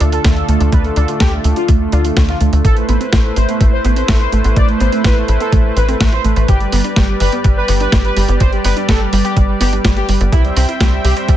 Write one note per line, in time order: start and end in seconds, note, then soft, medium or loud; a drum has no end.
0.00 0.19 D2 medium
0.00 2.61 D3 medium
0.00 0.11 A3 medium
0.00 2.61 D4 medium
0.00 0.12 D4 loud
0.00 2.61 F4 medium
0.00 2.61 A4 medium
0.00 closed hi-hat medium
0.12 0.24 F4 medium
0.12 0.23 A4 medium
0.12 closed hi-hat medium
0.24 0.43 D2 loud
0.24 0.35 A3 medium
0.24 0.30 A4 medium
0.24 kick loud
0.24 snare loud
0.24 closed hi-hat medium
0.36 0.47 A4 medium
0.36 closed hi-hat soft
0.48 0.58 D2 medium
0.48 0.59 A3 medium
0.48 0.54 A3 medium
0.48 closed hi-hat medium
0.60 0.70 D2 loud
0.60 0.71 A3 medium
0.60 0.72 D4 medium
0.60 closed hi-hat medium
0.72 0.91 D2 loud
0.72 0.81 A3 medium
0.72 0.83 B4 medium
0.72 kick loud
0.72 closed hi-hat medium
0.84 0.95 A3 medium
0.84 closed hi-hat soft
0.96 1.06 D2 medium
0.96 1.08 D4 loud
0.96 1.07 A4 medium
0.96 closed hi-hat medium
1.08 1.19 A3 medium
1.08 1.20 F4 medium
1.08 closed hi-hat soft
1.20 1.39 D2 medium
1.20 1.31 G4 medium
1.20 1.26 A4 medium
1.20 kick loud
1.20 snare loud
1.20 closed hi-hat medium
1.32 1.43 A3 medium
1.44 1.54 D2 medium
1.44 1.55 A3 medium
1.44 1.50 A3 medium
1.44 closed hi-hat medium
1.56 1.68 D4 medium
1.56 1.67 F4 medium
1.56 closed hi-hat medium
1.68 1.87 D2 medium
1.68 1.79 A3 medium
1.68 1.77 A3 medium
1.68 kick loud
1.68 closed hi-hat medium
1.81 1.91 A3 medium
1.92 2.11 D2 medium
1.92 2.04 D4 loud
1.92 2.03 F4 medium
1.92 closed hi-hat medium
2.04 2.15 A3 medium
2.04 2.16 F4 medium
2.04 closed hi-hat medium
2.16 2.35 D2 loud
2.16 2.27 A3 medium
2.16 2.22 A4 medium
2.16 kick loud
2.16 snare loud
2.16 closed hi-hat medium
2.28 2.39 F4 medium
2.28 snare soft
2.28 closed hi-hat soft
2.40 2.50 D2 medium
2.40 2.51 A3 medium
2.40 2.46 A3 medium
2.40 closed hi-hat medium
2.52 2.62 D2 loud
2.52 2.63 A3 medium
2.52 2.64 D4 medium
2.52 closed hi-hat medium
2.65 2.83 A1 loud
2.65 2.73 A3 medium
2.65 6.45 A3 medium
2.65 6.45 E4 medium
2.65 2.75 A4 loud
2.65 10.29 B4 medium
2.65 6.45 C5 medium
2.65 kick loud
2.65 closed hi-hat medium
2.77 2.87 A3 medium
2.77 closed hi-hat soft
2.89 2.98 A1 medium
2.89 2.99 A3 medium
2.89 3.00 B3 loud
2.89 closed hi-hat medium
3.00 3.12 C4 medium
3.00 closed hi-hat soft
3.12 3.31 A1 medium
3.12 3.23 A3 medium
3.12 3.18 E4 medium
3.12 kick loud
3.12 snare loud
3.12 closed hi-hat medium
3.24 3.35 A3 medium
3.36 3.46 A1 medium
3.36 3.42 A3 medium
3.36 3.47 C5 medium
3.36 closed hi-hat medium
3.49 3.59 A3 medium
3.49 3.60 B3 medium
3.49 closed hi-hat medium
3.60 3.79 A1 medium
3.60 3.69 A3 medium
3.60 3.71 A3 medium
3.60 kick loud
3.60 closed hi-hat medium
3.72 3.83 C5 medium
3.84 4.03 A1 medium
3.84 3.95 A3 medium
3.84 3.96 B3 loud
3.84 closed hi-hat medium
3.96 4.08 C4 medium
3.96 4.07 C5 medium
3.96 closed hi-hat soft
4.08 4.27 A1 loud
4.08 4.19 A3 medium
4.08 4.14 E4 medium
4.08 kick loud
4.08 snare loud
4.08 closed hi-hat medium
4.20 4.31 C5 medium
4.20 closed hi-hat soft
4.32 4.42 A1 medium
4.32 4.43 A3 medium
4.32 4.38 A3 medium
4.32 closed hi-hat medium
4.44 4.54 A1 loud
4.44 4.55 A3 medium
4.44 4.56 B3 medium
4.44 closed hi-hat medium
4.56 4.75 A1 loud
4.56 4.65 A3 medium
4.56 4.67 D5 medium
4.56 kick loud
4.56 closed hi-hat medium
4.69 4.79 A3 medium
4.69 closed hi-hat soft
4.80 4.90 A1 medium
4.80 4.92 B3 loud
4.80 4.91 C5 medium
4.80 closed hi-hat medium
4.92 5.04 A3 medium
4.92 5.04 C4 medium
4.92 closed hi-hat soft
5.04 5.23 A1 medium
5.04 5.10 E4 medium
5.04 5.15 B4 medium
5.04 kick loud
5.04 snare loud
5.04 closed hi-hat medium
5.17 5.27 A3 medium
5.28 5.38 A1 medium
5.28 5.34 A3 medium
5.28 5.39 A3 medium
5.28 closed hi-hat medium
5.40 5.52 B3 medium
5.40 5.51 A4 medium
5.40 closed hi-hat soft
5.52 5.71 A1 medium
5.52 5.61 A3 medium
5.52 5.63 A3 medium
5.52 kick loud
5.52 closed hi-hat medium
5.65 5.75 A3 medium
5.76 5.95 A1 medium
5.76 5.82 C4 medium
5.76 5.87 B4 medium
5.76 closed hi-hat medium
5.88 5.99 A3 medium
5.88 5.94 C4 medium
5.88 closed hi-hat soft
6.00 6.19 A1 loud
6.00 6.09 A3 medium
6.00 6.11 A3 medium
6.00 kick loud
6.00 snare loud
6.00 closed hi-hat medium
6.13 6.23 C5 medium
6.13 snare soft
6.13 closed hi-hat soft
6.24 6.34 A1 medium
6.24 6.36 A3 medium
6.24 6.35 A3 medium
6.24 closed hi-hat medium
6.36 6.46 A1 loud
6.36 6.47 A3 medium
6.36 6.45 B4 loud
6.36 closed hi-hat soft
6.48 6.67 G1 loud
6.48 10.29 G3 medium
6.48 6.57 G3 medium
6.48 10.28 G4 medium
6.48 6.59 G4 loud
6.48 10.29 D5 medium
6.48 kick loud
6.48 closed hi-hat medium
6.60 6.71 G3 medium
6.60 closed hi-hat soft
6.72 6.82 G1 medium
6.72 6.83 G3 medium
6.72 6.84 B3 loud
6.72 open hi-hat loud
6.84 6.96 D4 medium
6.84 closed hi-hat soft
6.96 7.15 G1 medium
6.96 7.07 G3 medium
6.96 7.02 G4 medium
6.96 kick loud
6.96 snare loud
6.96 closed hi-hat medium
7.09 7.19 G3 medium
7.20 7.30 G1 medium
7.20 7.26 G3 medium
7.20 7.31 B4 medium
7.20 open hi-hat loud
7.32 7.43 G3 medium
7.32 7.44 B3 medium
7.32 closed hi-hat medium
7.44 7.63 G1 medium
7.44 7.55 G3 medium
7.44 7.53 G3 medium
7.44 kick loud
7.44 closed hi-hat medium
7.57 7.67 B4 medium
7.68 7.87 G1 medium
7.68 7.79 G3 medium
7.68 7.80 B3 loud
7.68 open hi-hat loud
7.80 7.92 D4 medium
7.80 7.91 B4 medium
7.80 closed hi-hat soft
7.92 8.11 G1 loud
7.92 8.03 G3 medium
7.92 7.98 G4 medium
7.92 kick loud
7.92 snare loud
7.92 closed hi-hat medium
8.05 8.15 B4 medium
8.05 closed hi-hat soft
8.16 8.26 G1 medium
8.16 8.22 G3 medium
8.16 8.27 G3 medium
8.16 open hi-hat loud
8.28 8.38 G1 loud
8.28 8.39 G3 medium
8.28 8.40 B3 medium
8.28 closed hi-hat soft
8.40 8.59 G1 loud
8.40 8.49 G3 medium
8.40 8.51 C5 medium
8.40 kick loud
8.40 closed hi-hat medium
8.52 8.63 G3 medium
8.52 closed hi-hat soft
8.64 8.74 G1 medium
8.64 8.76 B3 loud
8.64 8.75 B4 medium
8.64 open hi-hat loud
8.76 8.87 G3 medium
8.76 8.88 D4 medium
8.76 closed hi-hat soft
8.88 9.07 G1 medium
8.88 8.94 G4 medium
8.88 8.99 A4 medium
8.88 kick loud
8.88 snare loud
8.88 closed hi-hat medium
9.00 9.11 G3 medium
9.12 9.22 G1 medium
9.12 9.23 G3 medium
9.12 9.18 G3 medium
9.12 open hi-hat loud
9.24 9.36 B3 medium
9.24 9.35 G4 loud
9.24 closed hi-hat soft
9.36 9.55 G1 medium
9.36 9.47 G3 medium
9.36 9.45 G3 medium
9.36 kick loud
9.36 closed hi-hat medium
9.48 9.59 G3 medium
9.60 9.79 G1 medium
9.60 9.72 B3 loud
9.60 9.71 G4 medium
9.60 open hi-hat loud
9.72 9.83 G3 medium
9.72 9.84 D4 medium
9.72 closed hi-hat medium
9.84 10.03 G1 loud
9.84 9.95 G3 medium
9.84 9.90 G4 medium
9.84 kick loud
9.84 snare loud
9.84 closed hi-hat medium
9.97 10.07 G4 medium
9.97 snare soft
9.97 closed hi-hat soft
10.08 10.18 G1 medium
10.08 10.19 G3 medium
10.08 10.14 G3 medium
10.08 open hi-hat loud
10.20 10.30 G1 loud
10.20 10.31 G3 medium
10.20 10.32 B3 medium
10.20 closed hi-hat medium
10.32 10.51 C2 loud
10.32 10.41 G3 medium
10.32 11.37 C4 medium
10.32 10.43 E4 medium
10.32 11.37 C5 medium
10.32 11.37 E5 medium
10.32 11.37 G5 medium
10.32 kick loud
10.32 closed hi-hat medium
10.44 10.55 G3 medium
10.44 closed hi-hat soft
10.56 10.66 C2 medium
10.56 10.67 G3 medium
10.56 10.68 C4 loud
10.56 open hi-hat loud
10.69 10.80 E4 medium
10.69 closed hi-hat medium
10.80 10.99 C2 medium
10.80 10.91 G3 medium
10.80 10.86 G4 medium
10.80 kick loud
10.80 snare loud
10.80 closed hi-hat medium
10.92 11.03 G3 medium
11.04 11.14 C2 medium
11.04 11.10 G3 medium
11.04 11.15 G4 medium
11.04 open hi-hat loud
11.16 11.27 G3 medium
11.16 11.28 C4 medium
11.16 closed hi-hat medium
11.28 11.37 C2 medium
11.28 11.37 G3 medium
11.28 kick loud
11.28 closed hi-hat medium